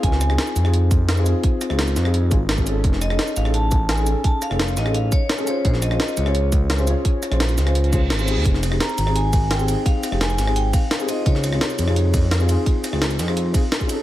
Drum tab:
RD |----------------|----------------|----------------|----------------|
HH |x-x-x-x-x-x-x-x-|x-x-xxx-x-x-x-x-|x-x-x-x-x-x-x-x-|x-x-x-x-x-x-x-x-|
SH |--x--xx---x--xx-|--x--xx---x--xx-|--x--xx---x--xx-|--x--xx---x--xx-|
SD |-orro--r----o---|--rro-or----o---|-orro--r----o---|--rro-or----o---|
BD |o---------o-----|o---------o--o--|o---------o-----|o---------o-----|

RD |----------------|----------------|--x---x---x---x-|--x---x---x---x-|
HH |x-x-x-x-x-x-x-x-|x-xxxxxxxxx-x-x-|x-x-x-x-x-x-x-x-|x-x-x-x-x-x-x-x-|
SH |--x--xx---x--xx-|--x--xx---x--xx-|--x--xx---x--xx-|--x--xx---x--xx-|
SD |-orro--r----o---|--rro-or----o---|-orro--r----o---|--rro-or----o---|
BD |o---------o-----|o---------o-----|o---------o-----|o---------o-----|

RD |--x---x---x---x-|--x---x---x---x-|
HH |x-x-x-x-x-x-x-x-|x-x-xxx-x-x-x-x-|
SH |--x--xx---x--xx-|--x--xx---x--xx-|
SD |-orro--r----o---|--rro-or----o---|
BD |o---------o-----|o---------o--o--|